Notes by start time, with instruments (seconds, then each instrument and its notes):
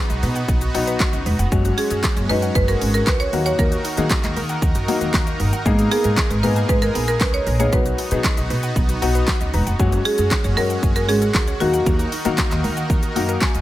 Already playing: grand piano F#3 B3 D#4 G#4, supersaw synth B3 D#4 F#4, marimba B4
0.10 upright bass B1, synth pluck D#5, closed hi-hat, shaker
0.23 upright bass B2, synth pluck B4, open hi-hat, shaker
0.36 synth pluck F#5, closed hi-hat, shaker
0.48 upright bass B1, synth pluck B3, kick, shaker
0.61 synth pluck F#4, closed hi-hat, shaker
0.74 upright bass B1, grand piano F#3 B3 D#4 F#4, synth pluck D#4, open hi-hat, shaker
0.87 synth pluck B4, closed hi-hat, shaker
1.00 synth pluck F#4, kick, snare, clap, shaker
1.13 upright bass C#2, synth pluck D#5, closed hi-hat, shaker
1.26 upright bass E1, synth pluck B4, open hi-hat, shaker
1.39 upright bass F1, synth pluck F#5, closed hi-hat, shaker
1.52 upright bass F#1, grand piano F#3 G#3 C#4 F#4, supersaw synth G#3 C#4 F#4, synth pluck G#3, kick, shaker
1.65 synth pluck F#4, closed hi-hat, shaker
1.78 synth pluck C#4, marimba G#4, open hi-hat, shaker
1.91 upright bass F#2, synth pluck G#4, closed hi-hat, shaker
2.04 synth pluck F#4, kick, snare, clap, shaker
2.16 upright bass F#1, synth pluck C#5, closed hi-hat, shaker
2.29 upright bass F#2, grand piano F#3 G#3 C#4 D#4, synth pluck G#4, marimba B4, open hi-hat, shaker
2.42 synth pluck F#5, closed hi-hat, shaker
2.55 upright bass F#1, synth pluck G#3, marimba B4, kick, shaker
2.68 synth pluck F#4, marimba A#4, closed hi-hat, shaker
2.81 upright bass G#1, synth pluck C#4, open hi-hat, shaker
2.94 synth pluck G#4, marimba A#4, closed hi-hat, shaker
3.07 upright bass C#2, synth pluck F#4, marimba B4, kick, snare, clap, shaker
3.20 marimba C#5, synth pluck C#5, closed hi-hat, shaker
3.33 upright bass D#2, supersaw synth D#3 D#4 A#4, grand piano F#3 A#3 D#4 F#4, synth pluck A#4, open hi-hat, shaker
3.46 marimba C#5, synth pluck F#5, closed hi-hat, shaker
3.59 upright bass D#2, synth pluck A#3, marimba A#4, kick, shaker
3.72 synth pluck F#4, closed hi-hat, shaker
3.85 synth pluck D#4, open hi-hat, shaker
3.97 upright bass D#3, grand piano F#3 A#3 D#4 G#4, synth pluck A#4, closed hi-hat, shaker
4.10 synth pluck F#4, kick, snare, clap, shaker
4.23 upright bass D#2, synth pluck D#5, clap, closed hi-hat, shaker
4.36 upright bass D#3, synth pluck A#4, open hi-hat, shaker
4.49 synth pluck F#5, closed hi-hat, shaker
4.62 upright bass D#2, synth pluck A#3, kick, shaker
4.75 upright bass F#2, synth pluck F#4, closed hi-hat, shaker
4.88 grand piano F#3 A#3 D#4 F#4, synth pluck D#4, open hi-hat, shaker
5.01 upright bass D#2, synth pluck A#4, closed hi-hat, shaker
5.14 upright bass D#2, synth pluck F#4, kick, snare, clap, shaker
5.27 synth pluck D#5, closed hi-hat, shaker
5.40 upright bass G1, synth pluck A#4, open hi-hat, shaker
5.53 synth pluck F#5, closed hi-hat, shaker
5.65 upright bass G#1, supersaw synth G#3 G#4, grand piano A#3 B3 D#4 G#4, synth pluck A#3, kick, shaker
5.79 synth pluck G#4, closed hi-hat, shaker
5.91 synth pluck B3, marimba G#4, open hi-hat, shaker
6.04 upright bass G#2, synth pluck A#4, closed hi-hat, shaker
6.17 synth pluck G#4, kick, snare, clap, shaker
6.30 upright bass G#1, synth pluck B4, closed hi-hat, shaker
6.43 upright bass G#2, grand piano A#3 B3 D#4 G#4, synth pluck A#4, marimba B4, open hi-hat, shaker
6.56 synth pluck G#5, closed hi-hat, shaker
6.69 upright bass G#1, synth pluck A#3, marimba B4, kick, shaker
6.82 synth pluck G#4, marimba A#4, closed hi-hat, shaker
6.95 upright bass A#1, synth pluck B3, open hi-hat, shaker
7.08 marimba A#4, synth pluck A#4, closed hi-hat, shaker
7.21 upright bass C#2, synth pluck G#4, marimba B4, kick, snare, clap, shaker
7.34 synth pluck B4, marimba C#5, closed hi-hat, shaker
7.47 upright bass A#1, synth pluck A#4, open hi-hat, shaker
7.59 grand piano A#3 B3 D#4 G#4, marimba C#5, synth pluck G#5, closed hi-hat, shaker
7.72 upright bass B1, grand piano F#3 B3 D#4 F#4, supersaw synth B3 D#4 F#4, synth pluck B3, marimba B4, kick, shaker
7.86 synth pluck F#4, closed hi-hat, shaker
7.98 synth pluck D#4, open hi-hat, shaker
8.11 upright bass B2, grand piano F#3 B3 D#4 G#4, synth pluck B4, closed hi-hat, shaker
8.24 synth pluck F#4, kick, snare, clap, shaker
8.37 upright bass B1, synth pluck D#5, closed hi-hat, shaker
8.50 upright bass B2, synth pluck B4, open hi-hat, shaker
8.63 synth pluck F#5, closed hi-hat, shaker
8.76 upright bass B1, synth pluck B3, kick, shaker
8.89 synth pluck F#4, closed hi-hat, shaker
9.02 upright bass B1, grand piano F#3 B3 D#4 F#4 D#5, synth pluck D#4, open hi-hat, shaker
9.15 synth pluck B4, closed hi-hat, shaker
9.28 synth pluck F#4, kick, snare, clap, shaker
9.41 upright bass C#2, synth pluck D#5, closed hi-hat, shaker
9.54 upright bass E1, synth pluck B4, grand piano A#5, open hi-hat, shaker
9.67 upright bass F1, synth pluck F#5, closed hi-hat, shaker
9.79 upright bass F#1, grand piano F#3 G#3 C#4 F#4, supersaw synth G#3 C#4 F#4, synth pluck G#3, kick, shaker
9.92 synth pluck F#4, closed hi-hat, shaker
10.05 synth pluck C#4, marimba G#4, open hi-hat, shaker
10.18 upright bass F#2, synth pluck G#4, closed hi-hat, shaker
10.31 synth pluck F#4, kick, snare, clap, shaker
10.44 upright bass F#1, synth pluck C#5, closed hi-hat, shaker
10.57 upright bass F#2, grand piano F#3 G#3 C#4 F#4, synth pluck G#4, marimba A#4, open hi-hat, shaker
10.70 synth pluck F#5, closed hi-hat, shaker
10.83 upright bass F#1, synth pluck G#3, kick, shaker
10.96 synth pluck F#4, marimba A#4, closed hi-hat, shaker
11.09 upright bass G#1, synth pluck C#4, marimba G#4, open hi-hat, shaker
11.22 synth pluck G#4, closed hi-hat, shaker
11.35 upright bass C#2, synth pluck F#4, kick, snare, clap, shaker
11.47 synth pluck C#5, closed hi-hat, shaker
11.60 upright bass D#2, supersaw synth D#3 D#4 A#4, grand piano F#3 A#3 D#4 F#4, marimba F#4, synth pluck A#4, open hi-hat, shaker
11.73 synth pluck F#5, closed hi-hat, shaker
11.86 upright bass D#2, synth pluck A#3, kick, shaker
11.99 synth pluck F#4, closed hi-hat, shaker
12.12 synth pluck D#4, open hi-hat, shaker
12.25 upright bass D#3, grand piano F#3 A#3 D#4 F#4, synth pluck A#4, closed hi-hat, shaker
12.38 synth pluck F#4, kick, snare, clap, shaker
12.51 upright bass D#2, synth pluck D#5, clap, closed hi-hat, shaker
12.64 upright bass D#3, synth pluck A#4, open hi-hat, shaker
12.77 synth pluck F#5, closed hi-hat, shaker
12.90 upright bass D#2, synth pluck A#3, kick, shaker
13.03 synth pluck F#4, closed hi-hat, shaker
13.15 upright bass F#2, grand piano F#3 A#3 D#4 F#4, synth pluck D#4, open hi-hat, shaker
13.29 synth pluck A#4, closed hi-hat, shaker
13.41 synth pluck F#4, grand piano G#5, kick, snare, clap, shaker
13.54 upright bass D#2, synth pluck D#5, closed hi-hat, shaker